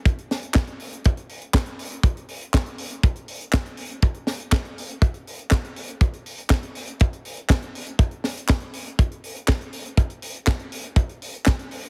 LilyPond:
\new DrumStaff \with { instrumentName = "Drums" } \drummode { \time 4/4 \tempo 4 = 121 <hh bd>16 hh16 <hho sn>16 hh16 <hc hh bd sn>16 hh16 hho16 hh16 <hh bd>16 hh16 hho16 hh16 <hc hh bd sn>16 hh16 hho16 hh16 | <hh bd>16 hh16 hho16 hh16 <hc hh bd sn>16 hh16 hho16 hh16 <hh bd>16 hh16 hho16 hh16 <hc bd sn>16 hh16 hho16 hh16 | <hh bd>16 hh16 <hho sn>16 hh16 <hc bd sn>16 hh16 hho16 hh16 <hh bd>16 hh16 hho16 hh16 <hc hh bd sn>16 hh16 hho16 hh16 | <hh bd>16 hh16 hho16 hh16 <hc hh bd sn>16 hh16 hho16 hh16 <hh bd>16 hh16 hho16 hh16 <hc hh bd sn>16 hh16 hho16 hh16 |
<hh bd>16 hh16 <hho sn>16 hh16 <hc bd sn>16 hh16 hho16 hh16 <hh bd>16 hh16 hho16 hh16 <hc hh bd sn>16 hh16 hho16 hh16 | <hh bd>16 hh16 hho16 hh16 <hc hh bd sn>16 hh16 hho16 hh16 <hh bd>16 hh16 hho16 hh16 <hc hh bd sn>16 hh16 hho16 hh16 | }